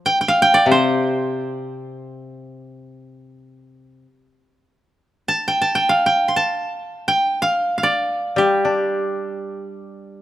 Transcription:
0.00 1.36 F3 soft
0.06 0.21 G5 medium
0.21 0.42 G5 soft
0.28 1.73 F5 medium
0.42 1.77 G5 medium
0.54 2.14 D5 medium
0.66 4.04 C3 soft
0.71 3.06 C5 medium
5.28 5.61 A5 medium
5.48 5.75 G5 medium
5.62 6.36 A5 medium
5.75 6.06 G5 medium
5.89 7.34 F5 medium
6.06 7.08 G5 medium
6.28 7.42 C6 soft
6.36 7.62 A5 medium
7.08 8.43 G5 medium
7.42 7.77 F5 medium
7.78 9.22 F5 soft
7.83 9.43 D5 medium
8.36 10.22 G3 soft
8.36 10.22 G4 medium
8.65 10.22 D4 soft

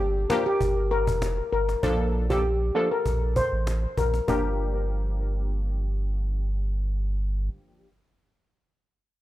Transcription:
0.00 0.26 G1 loud
0.30 0.43 F3 medium
0.30 0.44 A#3 medium
0.30 0.44 D4 medium
0.30 0.44 G4 medium
0.30 0.41 A#4 medium
0.30 cajon slap loud
0.46 0.56 G4 medium
0.60 1.09 G1 loud
0.60 cajon bass medium
0.91 1.02 A#4 medium
1.07 1.42 F1 medium
1.07 cajon bass loud
1.22 cajon slap loud
1.53 1.76 G1 medium
1.53 1.63 A#4 medium
1.69 cajon slap medium
1.83 2.71 A#1 loud
1.83 2.26 F3 medium
1.83 2.26 A#3 medium
1.83 2.26 D4 medium
1.83 2.26 A4 loud
1.83 cajon bass loud
2.30 2.42 F3 medium
2.30 2.42 A#3 medium
2.30 2.42 D4 medium
2.30 2.40 G4 medium
2.30 2.42 A4 medium
2.30 cajon bass medium
2.75 2.88 F3 medium
2.75 2.88 A#3 medium
2.75 2.88 D4 medium
2.75 2.86 A4 medium
2.75 2.89 A4 medium
2.91 3.01 A#4 medium
3.06 3.41 A#1 loud
3.06 cajon bass medium
3.36 3.47 C5 medium
3.36 cajon bass medium
3.52 3.86 A1 loud
3.67 cajon slap loud
3.97 4.21 A#1 medium
3.97 4.08 A#4 medium
3.97 cajon bass medium
4.14 cajon slap medium
4.28 7.49 G1 loud
4.28 7.86 F3 medium
4.28 7.87 A#3 medium
4.28 7.87 D4 medium
4.28 7.87 G4 loud
4.28 6.08 A#4 medium
4.28 cajon bass loud

